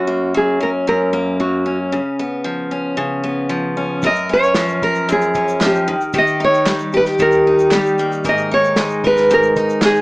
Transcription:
Already playing: steel-string acoustic guitar F#2 F#3 C#4, nylon-string guitar F#4
0.07 steel-string acoustic guitar A#3
0.34 steel-string acoustic guitar F#3, nylon-string guitar G#4
0.60 steel-string acoustic guitar C#4, nylon-string guitar A#4
0.87 steel-string acoustic guitar F#2, nylon-string guitar A#4
1.13 steel-string acoustic guitar A#3
1.40 steel-string acoustic guitar F#3, nylon-string guitar F#4
1.66 steel-string acoustic guitar C#4
1.92 steel-string acoustic guitar C#3
2.19 steel-string acoustic guitar B3
2.44 steel-string acoustic guitar F3
2.71 steel-string acoustic guitar C#4
2.97 steel-string acoustic guitar C#3
3.24 steel-string acoustic guitar B3
3.49 steel-string acoustic guitar F3
3.77 steel-string acoustic guitar C#4
4.02 steel-string acoustic guitar F#2 A#4, nylon-string guitar D#5, kick, shaker
4.15 shaker
4.29 steel-string acoustic guitar C#4
4.33 nylon-string guitar C#5
4.43 shaker
4.55 steel-string acoustic guitar F3, snare, clap, shaker
4.68 shaker
4.82 steel-string acoustic guitar A#4, nylon-string guitar A#4, kick
4.95 shaker
5.09 steel-string acoustic guitar F#2, nylon-string guitar G#4, shaker
5.21 shaker
5.34 steel-string acoustic guitar C#4, kick, shaker
5.48 shaker
5.60 steel-string acoustic guitar F3, snare, clap, shaker
5.66 nylon-string guitar G4
5.75 shaker
5.88 steel-string acoustic guitar D#3
6.01 shaker
6.13 steel-string acoustic guitar D#3 G4, kick, shaker
6.18 nylon-string guitar D#5
6.27 shaker
6.40 steel-string acoustic guitar D#4
6.44 nylon-string guitar C#5
6.54 shaker
6.66 steel-string acoustic guitar G3, snare, clap, shaker
6.79 shaker
6.93 steel-string acoustic guitar G4, shaker
6.97 nylon-string guitar B4
7.06 snare, shaker
7.19 steel-string acoustic guitar D#3, nylon-string guitar A#4, kick, shaker
7.32 shaker
7.47 steel-string acoustic guitar D#4
7.59 shaker
7.71 steel-string acoustic guitar G3, snare, clap, shaker
7.75 nylon-string guitar G4
7.86 shaker
7.98 steel-string acoustic guitar A#3, shaker
8.12 shaker
8.24 steel-string acoustic guitar G#2 A#4, kick, shaker
8.29 nylon-string guitar D#5
8.37 shaker
8.51 steel-string acoustic guitar D#4, nylon-string guitar C#5
8.64 shaker
8.76 steel-string acoustic guitar G#3, snare, clap, shaker
8.90 shaker
9.04 steel-string acoustic guitar A#4, nylon-string guitar B4, kick
9.17 snare, shaker
9.30 steel-string acoustic guitar G#2, nylon-string guitar A#4, shaker
9.43 shaker
9.56 steel-string acoustic guitar D#4, kick, shaker
9.69 shaker
9.82 steel-string acoustic guitar G#3, nylon-string guitar G#4, snare, clap, shaker
9.96 shaker

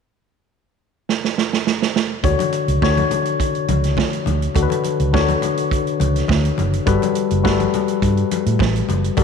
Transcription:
1.09 snare
1.24 snare
1.38 snare
1.53 snare
1.67 snare
1.82 snare
1.96 snare
2.23 fingered electric bass D2, tine electric piano D3 D4 F#4 C#5, kick, closed hi-hat, low conga
2.39 closed hi-hat, high conga
2.53 closed hi-hat, muted conga
2.68 fingered electric bass C#2, closed hi-hat
2.81 fingered electric bass D2, tine electric piano D3 D4 F#4 C#5, kick, snare
2.97 closed hi-hat, high conga
3.11 closed hi-hat, muted conga, low conga
3.25 closed hi-hat
3.40 kick, closed hi-hat
3.55 closed hi-hat
3.68 fingered electric bass C#2, closed hi-hat, muted conga, high conga
3.84 snare, closed hi-hat
3.97 kick, snare, high conga
4.13 closed hi-hat
4.26 fingered electric bass D2, closed hi-hat, muted conga, high conga, low conga
4.42 closed hi-hat
4.55 fingered electric bass D2, tine electric piano D3 D4 F#4 A4, kick, closed hi-hat, low conga
4.63 tine electric piano B4
4.70 closed hi-hat, high conga
4.84 closed hi-hat, muted conga
5.00 fingered electric bass C#2, closed hi-hat
5.13 fingered electric bass D2, tine electric piano D3 D4 F#4 C#5, kick, snare, muted conga
5.29 closed hi-hat, high conga
5.42 closed hi-hat, muted conga, low conga
5.57 closed hi-hat
5.71 kick, closed hi-hat
5.87 closed hi-hat
6.00 fingered electric bass C#2, closed hi-hat, high conga
6.16 snare, closed hi-hat
6.28 fingered electric bass D2, kick, snare, high conga
6.45 closed hi-hat
6.58 fingered electric bass F#1, closed hi-hat, muted conga, high conga, low conga
6.73 closed hi-hat
6.86 fingered electric bass G1, tine electric piano G3 F#4 A4 B4, kick, closed hi-hat, muted conga, low conga
7.02 closed hi-hat, high conga
7.15 closed hi-hat
7.31 fingered electric bass F#1, closed hi-hat
7.43 fingered electric bass G1, tine electric piano G3 F#4 A4 B4, kick, snare, muted conga
7.60 closed hi-hat, high conga
7.74 closed hi-hat, muted conga, low conga
7.88 closed hi-hat
8.02 fingered electric bass G2, kick, closed hi-hat, muted conga
8.17 closed hi-hat
8.31 closed hi-hat, high conga
8.46 fingered electric bass A2, closed hi-hat
8.59 fingered electric bass A1, kick, snare, high conga
8.76 closed hi-hat
8.89 fingered electric bass F#1, closed hi-hat, high conga, low conga
9.04 closed hi-hat
9.17 fingered electric bass G1, tine electric piano G3 F#4 A4 A#4, kick, closed hi-hat, muted conga, low conga

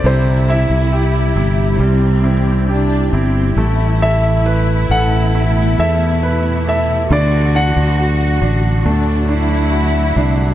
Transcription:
Already playing: ambient pad G3
0.04 fretless electric bass C2, grand piano C3 C5, ambient pad C3 E3 E4 G4, cello section E4
0.48 grand piano E4 E5
0.70 fretless electric bass C2
0.93 grand piano G4
1.36 fretless electric bass G1, grand piano E4
1.79 fretless electric bass C2, grand piano G3, cello section C4
2.24 grand piano E4
2.68 cello section D4, grand piano G4
3.12 fretless electric bass G1, cello section C4, grand piano E4
3.56 fretless electric bass A1, ambient pad B2 A3 A4, grand piano A3, cello section E4
4.02 grand piano A4 E5
4.46 grand piano B4
4.90 fretless electric bass A1, grand piano A4 F#5
5.34 grand piano E4, ambient pad G4
5.79 fretless electric bass E2, grand piano A4 E5
6.23 grand piano B4
6.67 grand piano A4 E5
7.10 fretless electric bass D2, ambient pad A2 D3 F#3 D4 F#4, grand piano D3 D5, cello section F#4
7.55 grand piano D4 F#5
7.76 fretless electric bass D2
7.98 grand piano F#4
8.42 fretless electric bass A1, grand piano D4
8.85 fretless electric bass D2, grand piano A3, ambient pad C4, cello section D4
9.28 grand piano D4, cello section E4
9.72 grand piano F#4
10.16 fretless electric bass C2, grand piano D4

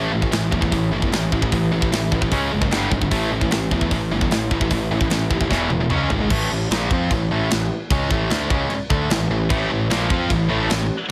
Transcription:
Already playing: picked electric bass A1, distorted electric guitar A2 E3 A3
0.12 picked electric bass A1, distorted electric guitar A2 E3
0.22 distorted electric guitar A2 E3, kick
0.32 picked electric bass A1, distorted electric guitar A2 E3, snare, open hi-hat
0.51 picked electric bass E2, distorted electric guitar A2 E3, kick
0.61 distorted electric guitar A2 E3, kick
0.72 picked electric bass A1, distorted electric guitar A2 E3, kick, open hi-hat
0.92 picked electric bass G1, distorted electric guitar A2 E3
1.02 distorted electric guitar A2 E3, kick
1.12 picked electric bass A1, distorted electric guitar A2 E3, snare, open hi-hat
1.32 picked electric bass A1, distorted electric guitar A2 E3, kick
1.42 distorted electric guitar A2 E3, kick
1.52 picked electric bass A1, distorted electric guitar A2 E3, kick, open hi-hat
1.72 picked electric bass A1, distorted electric guitar A2 E3
1.81 distorted electric guitar A2 E3, kick
1.92 picked electric bass A1, distorted electric guitar A2 E3, snare, open hi-hat
2.12 picked electric bass A1, distorted electric guitar A2 E3, kick
2.21 distorted electric guitar A2 E3, kick
2.31 picked electric bass C#2, distorted electric guitar C#3 G#3 C#4, kick, open hi-hat
2.52 picked electric bass F#1, distorted electric guitar C#3 G#3
2.62 distorted electric guitar C#3 G#3, kick
2.71 picked electric bass G1, distorted electric guitar G2 D3 G3, snare, open hi-hat
2.91 picked electric bass G#1, distorted electric guitar G2 D3, kick
3.02 distorted electric guitar G2 D3, kick
3.11 picked electric bass A1, distorted electric guitar A2 E3 A3, kick, open hi-hat
3.32 picked electric bass A1, distorted electric guitar A2 E3
3.41 distorted electric guitar A2 E3, kick
3.51 picked electric bass A1, distorted electric guitar A2 E3, snare, open hi-hat
3.71 picked electric bass E2, distorted electric guitar A2 E3, kick
3.81 distorted electric guitar A2 E3, kick
3.91 picked electric bass A1, distorted electric guitar A2 E3, kick, open hi-hat
4.11 picked electric bass G1, distorted electric guitar A2 E3
4.21 distorted electric guitar A2 E3, kick
4.31 picked electric bass A1, distorted electric guitar A2 E3, snare, open hi-hat
4.51 picked electric bass A1, distorted electric guitar A2 E3, kick
4.61 distorted electric guitar A2 E3, kick
4.70 picked electric bass A1, distorted electric guitar A2 E3, kick, open hi-hat
4.91 picked electric bass A1, distorted electric guitar A2 E3
5.01 distorted electric guitar A2 E3, kick
5.10 picked electric bass A1, distorted electric guitar A2 E3, snare, open hi-hat
5.30 picked electric bass D#2, distorted electric guitar A2 E3, kick
5.41 distorted electric guitar A2 E3, kick
5.50 picked electric bass E1, distorted electric guitar E2 B2 E3, kick, snare
5.70 picked electric bass E1, distorted electric guitar E2 B2, high tom
5.80 distorted electric guitar E2 B2
5.89 picked electric bass C#2, distorted electric guitar C#3 G#3 C#4, mid tom
6.10 picked electric bass G#1, distorted electric guitar C#3 G#3, floor tom
6.21 distorted electric guitar C#3 G#3
6.30 picked electric bass A1, distorted electric guitar A2 E3 A3, kick, crash
6.50 picked electric bass A1, distorted electric guitar A2 E3
6.70 picked electric bass A#1, distorted electric guitar A#2 F3 A#3, snare, crash
6.90 picked electric bass F2, distorted electric guitar F3 C4 F4, kick
7.11 picked electric bass A1, distorted electric guitar A2 E3, kick, crash
7.30 picked electric bass A1, distorted electric guitar A2 E3 A3
7.50 picked electric bass A1, distorted electric guitar A2 E3, snare, crash
7.90 picked electric bass C#2, distorted electric guitar C#3 G#3 C#4, kick, crash
8.10 picked electric bass A1, distorted electric guitar A2 E3 A3, kick
8.30 picked electric bass D2, distorted electric guitar D3 A3 D4, snare, crash
8.50 picked electric bass C#2, distorted electric guitar C#3 G#3 C#4, kick
8.70 muted picked electric bass stroke, muted distorted electric guitar stroke, crash
8.90 picked electric bass D2, distorted electric guitar D3 A3 D4, kick
9.10 picked electric bass A1, distorted electric guitar A2 E3, snare, crash
9.29 picked electric bass A1, distorted electric guitar A2 E3
9.50 picked electric bass A1, distorted electric guitar A2 E3 A3, kick, crash
9.70 picked electric bass A1, distorted electric guitar A2 E3
9.90 picked electric bass A#1, distorted electric guitar A#2 F3 A#3, snare, crash
10.10 picked electric bass F2, distorted electric guitar F3 C4 F4, kick
10.30 picked electric bass A1, distorted electric guitar A2 E3, kick, crash
10.50 picked electric bass A1, distorted electric guitar A2 E3 A3
10.70 picked electric bass A1, distorted electric guitar A2 E3, snare, crash

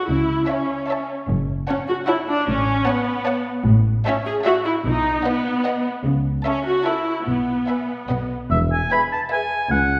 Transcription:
0.08 double bass section C#2, cello section C#3, viola section E4
0.47 viola section C#4, violin section C#5 E5 A5
0.88 violin section C#5 E5 A5
1.28 double bass section F#1, cello section F#2
1.68 viola section C#4, violin section C#5 F#5 A5
1.88 viola section F#4
2.07 viola section E4, violin section C#5 F#5 A5
2.28 viola section D4
2.47 double bass section A1, cello section A2, viola section C#4
2.86 viola section B3, violin section C#5 F#5 A5
3.26 violin section C#5 F#5 A5
3.66 double bass section A1, cello section A2
4.05 viola section C#4, violin section E5 A5
4.26 viola section G#4
4.45 viola section F#4, violin section E5 A5
4.65 viola section E4
4.85 double bass section B1, cello section B2, viola section D#4
5.25 viola section B3, violin section B4 D#5 F#5
5.64 violin section B4 D#5 F#5
6.04 double bass section C#2, cello section C#3
6.45 viola section C#4, violin section A4 E5 A5
6.65 viola section F#4
6.85 viola section E4, violin section A4 E5 A5
7.27 double bass section B1, cello section B2, viola section B3
7.67 violin section B4 E5 G#5
8.09 double bass section B1, cello section B2, violin section B4 D#5 F#5
8.50 tuba E1, double bass section E1, cello section E2, oboe E5
8.72 oboe G#5
8.91 viola section G#4, violin section B4 E5, oboe B5
9.13 oboe A5
9.31 viola section G#4, violin section B4 E5, oboe G#5
9.70 tuba C#2, double bass section C#2, cello section C#2, oboe F#5

